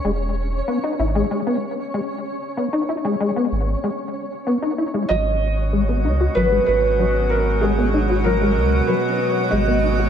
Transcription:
<<
  \new Staff \with { instrumentName = "Felt piano" } { \time 4/4 \key gis \minor \tempo 4 = 95 r1 | r1 | dis''2 b'8 b'4 ais'8 | gis'4 ais'4 b'4 dis''8. r16 | }
  \new Staff \with { instrumentName = "Synth texture" } { \time 4/4 \key gis \minor <cis' cis''>1~ | <cis' cis''>1 | <cis' cis''>1~ | <cis' cis''>1 | }
  \new Staff \with { instrumentName = "Acid bass" } { \time 4/4 \key gis \minor gis16 r8. b16 dis'16 e'16 gis16 gis16 b16 r8 gis16 r8. | b16 dis'16 e'16 gis16 gis16 b16 r8 gis16 r8. b16 dis'16 e'16 gis16 | fis16 r8. gis16 b16 dis'16 fis'16 fis16 gis16 r8 fis16 r8. | gis16 b16 dis'16 fis'16 fis16 gis16 r8 fis16 r8. gis16 b16 dis'16 fis'16 | }
  \new Staff \with { instrumentName = "Ambient pad" } { \clef bass \time 4/4 \key gis \minor r1 | r1 | <b, fis gis b fis'>1~ | <b, fis gis b fis'>1 | }
  \new Staff \with { instrumentName = "Sub bass" } { \clef bass \time 4/4 \key gis \minor e,,4 r8 gis,,8 r2 | r4. gis,,8 r2 | gis,,4. cis,8 gis,,8 gis,,4.~ | gis,,4. cis,8 r4 gis,,4 | }
>>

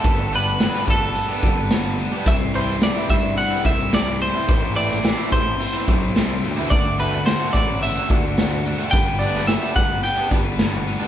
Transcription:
<<
  \new Staff \with { instrumentName = "Clean electric guitar" } { \time 4/4 \key g \major \tempo 4 = 108 a'8 b'4 a'2 r8 | e''8 c''8 d''8 e''8 fis''8 e''8 d''8 c''8~ | c''8 d''4 c''2 r8 | d''8 b'8 c''8 d''8 e''8 r4. |
g''8 d''8 e''8 fis''8 g''8 r4. | }
  \new Staff \with { instrumentName = "Distorted electric guitar" } { \time 4/4 \key g \major <g b d' b'>16 <b d' b'>16 <g b d' b'>16 <b d' b'>16 <g b d' b'>8 <g b d' b'>16 <b d' b'>8. <g b d' b'>16 <b d' b'>16 <g b d' b'>8 <g b d' b'>16 <b d' b'>16 | <c e g c' e' c''>16 <g c' e' c''>16 <g c' e' c''>16 <g c' e' c''>16 <c e g c' e' c''>8 <g c' e' c''>16 <g c' e' c''>8. <g c' e' c''>16 <g c' e' c''>16 <c e g c' e' c''>8 <g c' e' c''>16 <g c' e' c''>16 | <a, a c' e' c''>16 <c' e' c''>16 <a c' e' c''>16 <c' e' c''>16 <a, a c' e' c''>8 <a c' e' c''>16 <c' e' c''>8. <a c' e' c''>16 <c' e' c''>16 <a, a c' e' c''>8 <a c' e' c''>16 <c' e' c''>16 | <d d' fis' a'>16 <d' fis' a'>16 <d d' fis' a'>16 <d' fis' a'>16 <d d' a'>8 <d d' fis' a'>16 <d' fis' a'>8. <d d' fis' a'>16 <d' fis' a'>16 <d d' fis' a'>8 <d d' fis' a'>16 <d' fis' a'>16 |
<g b d' b'>16 <b d' b'>16 <g b d' b'>16 <b d' b'>16 <g b d' b'>8 <g b d' b'>16 <b d' b'>8. <g b d' b'>16 <b d' b'>16 <g b d' b'>8 <g b d' b'>16 <b d' b'>16 | }
  \new Staff \with { instrumentName = "Overdriven electric guitar" } { \time 4/4 \key g \major r8 <g b d' g'>16 r8 <g b d' g'>16 r8. <g b d' g'>16 r4 r16 <g b d' g'>16 | r8 <e g c' e'>16 r8 <e g c' e'>16 r8. <e g c' e'>16 r4 r16 <e g c' e'>16 | r8 <e a c' e'>16 r8 <e a c' e'>16 r8. <e a c' e'>16 r4 r16 <e a c' e'>16 | r8 <d a c' fis'>16 r8 <d a c' fis'>16 r8. <d a c' fis'>16 r4 r16 <d a c' fis'>16 |
r8 <g b d' g'>16 r8 <g b d' g'>16 r8. <g b d' g'>16 r4 r16 <g b d' g'>16 | }
  \new Staff \with { instrumentName = "Picked electric bass" } { \clef bass \time 4/4 \key g \major g,,4. g,,8 r8 g,,4. | c,4. g,4 c,4. | a,,4. a,,8 r8 b,,8 c,8 d,8 | d,4. a,,4 d,4. |
g,,4. g,,8 r8 g,,4. | }
  \new DrumStaff \with { instrumentName = "Drums" } \drummode { \time 4/4 <hh bd>8 hh8 <hh sn>8 <hh bd>8 hh8 <hh bd>8 <hh sn>8 hh8 | <hh bd>8 hh8 <hh sn>8 <hh bd>8 hh8 <hh bd>8 <hh sn>8 hh8 | <hh bd>8 hh16 sn16 <hh sn>8 <hh bd>8 hh8 <hh bd>8 <hh sn>8 hh8 | <hh bd>8 hh8 <hh sn>8 <hh bd>8 hh8 <hh bd>8 <hh sn>8 hh8 |
<hh bd>8 hh16 sn16 <hh sn>8 <hh bd>8 hh8 <hh bd>8 <hh sn>8 hh8 | }
>>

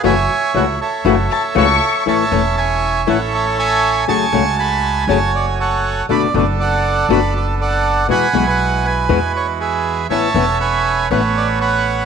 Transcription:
<<
  \new Staff \with { instrumentName = "Violin section" } { \time 4/4 \key fis \minor \tempo 4 = 120 r2 r8 a''8 cis'''4 | \key a \major r1 | r1 | r1 |
r1 | r1 | }
  \new Staff \with { instrumentName = "Bandoneon" } { \time 4/4 \key fis \minor << { gis''4 fis''8 e''4 cis''8 e''4 | \key a \major a''4 gis''4 fis''8 e''8 gis''4 | cis'''4 b''4 a''8 d''8 fis''4 | b''8 d''8 fis''4 b''8 d''8 fis''4 |
b''8. fis''8. gis''4 cis''8 e''4 | a''4 gis''4 fis''8 d''8 fis''4 | } \\ { <cis'' e''>4. <a' cis''>4. <a' cis''>4 | <cis'' e''>4 <cis'' e''>4 <a' cis''>4 <cis'' e''>4 | <gis'' a''>4 gis''4 cis''4 <a' cis''>4 | d''4 <a' d''>4 d''4 <a' d''>4 |
<fis'' gis''>8. b'8. b'4. <gis' b'>4 | <cis'' e''>4 <b' cis''>4 <b' cis''>4 <b' cis''>4 | } >> }
  \new Staff \with { instrumentName = "Bandoneon" } { \time 4/4 \key fis \minor <a e' fis'>8 r8 <a e' fis'>8 r8 <a e' fis'>8 r8 <a e' fis'>8 r8 | \key a \major <cis' e' a'>8 <cis' e' a'>4. <cis' e' a'>2 | <a fis' gis'>8 <gis a fis'>4. <a fis' gis''>2 | <b d' a'>8 <b d' a'>4. <b d' a'>2 |
<gis e' fis'>8 <gis e' fis'>4. <gis e' fis'>2 | <b cis' a'>8 <b cis' a'>4. <b cis' a'>2 | }
  \new Staff \with { instrumentName = "Nylon-string guitar" } { \time 4/4 \key fis \minor <cis e a cis' fis'>8 r8 <cis e a cis' fis'>8 r8 <cis e a cis' fis'>8 r8 <cis e a cis' fis'>8 r8 | \key a \major <e a cis' e'>8 <e a cis' e'>8 r4 <e a cis' e'>8 r4. | <cis fis a cis' gis'>8 <cis fis a cis' gis'>8 r4 <cis fis a cis' gis'>8 r4. | <b, d a b fis'>8 <b, d a b fis'>8 r4 <b, d a b fis'>8 r4. |
<b, e gis b fis'>8 <b, e gis b fis'>8 r4 <b, e gis b fis'>8 r4. | <e b cis' e'>8 <e b cis' e'>8 r4 <e b cis' e'>8 r4. | }
  \new Staff \with { instrumentName = "Upright bass" } { \clef bass \time 4/4 \key fis \minor fis,,8 r8 cis,8 r8 fis,,8 r8 cis,8 r8 | \key a \major a,,8 e,,4. a,,2 | fis,,8 cis,4. fis,,2 | fis,,8 fis,,4. fis,,2 |
e,8 b,,4. e,2 | a,,8 e,,4. a,,2 | }
>>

